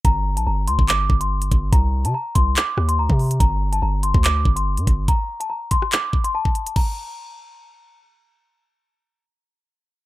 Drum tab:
CC |----------------|----------------|----------------|----------------|
HH |x--x--x-x--x-xx-|x--x--x-x--x--ox|x--x--x-x--x-xx-|x--x--x-x--x--xx|
CP |--------x-------|--------x-------|--------x-------|--------x-------|
SD |----------------|----------r-----|----------------|-------r--------|
BD |o------o--o---o-|o-----o------o--|o------o--o---o-|o-----o---o--o--|

CC |x---------------|----------------|
HH |----------------|----------------|
CP |----------------|----------------|
SD |----------------|----------------|
BD |o---------------|----------------|